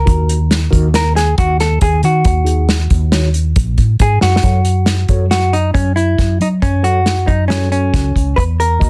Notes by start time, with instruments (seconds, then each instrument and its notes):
Already playing: hollow-body jazz guitar A#4
0.05 fretless electric bass D#2, tine electric piano D#3 D#4 F#4 A#4, kick, closed hi-hat
0.29 closed hi-hat
0.51 snare, closed hi-hat
0.71 fretless electric bass D#2, tine electric piano D#3 D#4 F#4 A#4, kick, closed hi-hat
0.94 hollow-body jazz guitar A#4, snare, closed hi-hat
1.16 hollow-body jazz guitar G#4, snare, closed hi-hat
1.38 fretless electric bass D#2, hollow-body jazz guitar F#4, kick, closed hi-hat
1.60 hollow-body jazz guitar A4, snare, closed hi-hat
1.81 fretless electric bass D#2, hollow-body jazz guitar G#4, kick, closed hi-hat
2.03 fretless electric bass D#3, hollow-body jazz guitar F#4, closed hi-hat
2.24 fretless electric bass D#2, kick, closed hi-hat
2.45 tine electric piano D#3 D#4 F#4 G#4, closed hi-hat
2.69 snare, closed hi-hat
2.90 fretless electric bass D#2, kick, closed hi-hat
3.12 tine electric piano D#3 D#4 F#4 C#5, snare, closed hi-hat
3.34 closed hi-hat
3.56 fretless electric bass A#1, kick, closed hi-hat
3.78 fretless electric bass A2, kick, closed hi-hat
3.99 fretless electric bass G#2, hollow-body jazz guitar G#4, kick, closed hi-hat
4.21 fretless electric bass F#2, hollow-body jazz guitar F#4, snare
4.36 snare
4.43 fretless electric bass F#2, tine electric piano F#3 F#4 A4 C#5, kick, closed hi-hat
4.65 closed hi-hat
4.86 snare, closed hi-hat
5.08 fretless electric bass F#2, tine electric piano F#3 F#4 A4 C#5, kick, closed hi-hat
5.31 hollow-body jazz guitar F#4, snare, closed hi-hat
5.53 hollow-body jazz guitar D#4, closed hi-hat
5.74 fretless electric bass F#2, hollow-body jazz guitar C#4, kick, closed hi-hat
5.96 hollow-body jazz guitar E4, closed hi-hat
6.18 fretless electric bass F#2, kick, snare, closed hi-hat
6.40 fretless electric bass F#3, hollow-body jazz guitar D#4, closed hi-hat
6.62 fretless electric bass F#2, hollow-body jazz guitar C#4, kick, closed hi-hat
6.83 tine electric piano F#3 F#4 A4 C#5, hollow-body jazz guitar F#4, closed hi-hat
7.06 snare, closed hi-hat
7.27 fretless electric bass F#2, hollow-body jazz guitar D#4, kick, closed hi-hat
7.48 tine electric piano F#3 F#4 A4 C#5, hollow-body jazz guitar C#4, snare, closed hi-hat
7.72 hollow-body jazz guitar C#4, closed hi-hat
7.94 fretless electric bass C#2, kick, snare, closed hi-hat
8.16 fretless electric bass C#2, kick, closed hi-hat
8.36 fretless electric bass E2, hollow-body jazz guitar B4, kick, closed hi-hat
8.60 hollow-body jazz guitar A#4, closed hi-hat
8.79 fretless electric bass D#2, tine electric piano D#3 A#3 F#4 D#5, kick, closed hi-hat